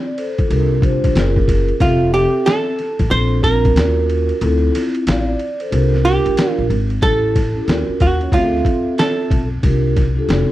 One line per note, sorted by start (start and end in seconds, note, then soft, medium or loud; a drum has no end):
0.06 0.17 D5 medium
0.18 0.37 A4 medium
0.18 0.37 C5 medium
0.18 ride medium
0.38 0.48 F4 medium
0.38 0.69 A4 medium
0.38 kick medium
0.38 ride soft
0.48 0.94 C2 medium
0.48 0.74 D4 medium
0.48 0.74 F4 medium
0.48 0.75 G4 medium
0.48 0.75 A#4 medium
0.48 ride medium
0.80 1.14 D4 medium
0.80 1.14 F4 medium
0.80 1.15 G4 medium
0.80 1.16 C5 loud
0.80 kick medium
0.80 ride medium
1.04 1.14 A#1 medium
1.04 kick medium
1.04 ride soft
1.14 1.69 F#1 loud
1.14 1.70 C#4 medium
1.14 1.71 F4 medium
1.14 1.71 G#4 medium
1.14 1.72 A#4 loud
1.14 snare loud
1.14 hi-hat pedal medium
1.14 ride medium
1.36 kick medium
1.48 kick loud
1.48 ride medium
1.68 ride soft
1.79 2.25 F1 medium
1.79 2.69 C4 medium
1.79 2.13 F4 medium
1.79 2.71 G4 medium
1.79 2.71 A4 medium
1.79 2.70 E5 medium
1.79 kick loud
1.79 ride medium
2.14 2.47 G4 medium
2.14 ride medium
2.46 3.11 A4 medium
2.46 snare loud
2.46 hi-hat pedal soft
2.46 ride medium
2.79 snare soft
2.79 ride soft
2.99 3.09 A1 medium
2.99 kick medium
2.99 ride soft
3.10 3.77 A#1 loud
3.10 3.35 C4 medium
3.10 3.36 D4 medium
3.10 3.36 F4 medium
3.10 3.37 A4 medium
3.10 3.43 C5 loud
3.10 ride medium
3.42 3.76 C4 medium
3.42 3.76 D4 medium
3.42 3.75 F4 medium
3.42 4.05 A#4 medium
3.42 3.77 A#4 medium
3.42 kick medium
3.42 ride soft
3.65 kick medium
3.65 ride soft
3.75 4.30 D#2 medium
3.75 4.31 C#4 medium
3.75 4.32 F4 medium
3.75 4.33 F#4 medium
3.75 4.33 A#4 medium
3.75 snare loud
3.75 hi-hat pedal medium
3.75 ride medium
4.09 ride medium
4.29 ride soft
4.40 4.68 D2 loud
4.40 5.30 C4 medium
4.40 5.31 E4 medium
4.40 5.31 F4 medium
4.40 4.75 A4 medium
4.40 ride medium
4.75 snare soft
4.75 ride medium
4.95 ride soft
5.07 5.34 A1 medium
5.07 5.27 D5 soft
5.07 5.26 F5 medium
5.07 snare loud
5.07 hi-hat pedal soft
5.07 ride medium
5.28 5.59 D5 medium
5.39 ride medium
5.60 5.92 A4 medium
5.60 5.91 C5 medium
5.60 ride soft
5.70 6.16 C2 loud
5.70 5.96 D4 medium
5.70 5.96 F4 medium
5.70 5.97 G4 medium
5.70 5.98 A#4 medium
5.70 ride medium
5.94 snare soft
6.03 6.69 D4 medium
6.03 6.69 F4 medium
6.03 6.70 G4 medium
6.03 6.51 G4 loud
6.03 6.70 A#4 medium
6.03 ride medium
6.26 6.35 A1 medium
6.26 ride soft
6.37 snare loud
6.37 hi-hat pedal medium
6.37 ride medium
6.51 6.66 F4 loud
6.58 6.68 A#1 medium
6.70 6.97 G#1 medium
6.70 ride medium
6.90 ride soft
7.01 7.56 A1 loud
7.01 7.34 C#4 medium
7.01 7.35 E4 medium
7.01 7.35 G4 medium
7.01 7.64 A4 loud
7.01 7.36 A4 medium
7.01 kick loud
7.01 ride medium
7.36 kick medium
7.36 snare soft
7.36 ride medium
7.54 7.65 C#4 medium
7.54 7.67 E4 medium
7.54 7.68 G4 medium
7.54 7.68 A4 medium
7.66 7.85 D#2 medium
7.66 8.08 C#4 medium
7.66 8.08 F4 medium
7.66 8.09 F#4 medium
7.66 8.09 A#4 medium
7.66 snare loud
7.66 hi-hat pedal soft
7.66 ride medium
7.89 muted upright bass stroke soft
8.00 8.27 D#2 medium
8.00 8.33 F#4 medium
8.00 kick medium
8.00 ride medium
8.20 8.32 C#4 medium
8.20 8.33 F4 medium
8.20 8.33 F#4 medium
8.20 8.34 C#5 medium
8.20 ride soft
8.31 8.59 D2 loud
8.31 9.38 C4 medium
8.31 9.39 F4 medium
8.31 8.94 F4 medium
8.31 8.42 G#4 medium
8.31 9.39 E5 medium
8.31 kick medium
8.31 ride medium
8.41 9.43 A4 medium
8.55 snare soft
8.65 kick medium
8.65 ride soft
8.98 9.48 A4 medium
8.98 snare loud
8.98 hi-hat pedal soft
8.98 ride medium
9.31 9.58 B1 medium
9.31 kick medium
9.31 ride medium
9.62 10.17 C2 medium
9.62 9.95 D4 medium
9.62 9.96 F4 medium
9.62 9.96 G4 medium
9.62 9.97 A#4 medium
9.62 kick loud
9.62 ride medium
9.97 kick medium
9.97 snare soft
9.97 ride medium
10.15 10.28 D4 medium
10.15 10.28 F4 medium
10.15 10.29 G4 medium
10.15 10.29 A4 medium
10.27 10.46 F1 medium
10.27 10.52 C4 medium
10.27 10.52 D#4 medium
10.27 10.52 F#4 medium
10.27 10.52 A4 medium
10.27 snare loud
10.27 hi-hat pedal soft
10.27 ride medium